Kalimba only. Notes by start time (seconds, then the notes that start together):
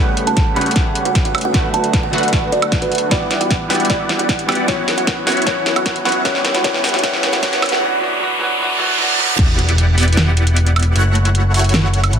Already playing: F#5
0.27 A5
0.57 B5
1.06 F#5
1.25 F#5
1.45 F#5
1.74 A5
2.03 F#5
2.52 D5
2.82 B4
3.11 D5
3.41 F#5
3.70 G5
3.90 D5
4.19 F#5
4.48 G5
4.68 C#5
4.98 F#5
5.27 F#5
5.47 C#5
5.76 F#5
6.06 F#5
6.25 C#5
6.54 F#5
6.64 C#5
6.94 F#5
7.03 C#5
7.33 F#5
7.43 C#5
7.72 F#5